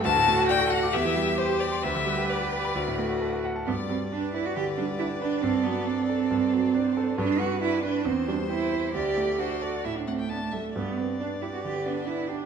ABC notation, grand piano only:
X:1
M:4/4
L:1/16
Q:1/4=135
K:G
V:1 name="Grand piano"
D,, A,, A, F d A f d' E,, E, G, G c G g c' | D,, D, G, G B G g b D,, A,, A, F A F f a | G,,2 G,2 D2 B2 D,2 G,2 D2 B2 | G,,2 F,2 D2 A2 G,,2 F,2 D2 A2 |
G,,2 G,2 D2 B2 E,,2 G,2 C2 c2 | D,,2 A,2 D2 A2 A,,2 A,2 D2 A2 | G,,2 B,2 D2 G2 D,2 B,2 D2 G2 |]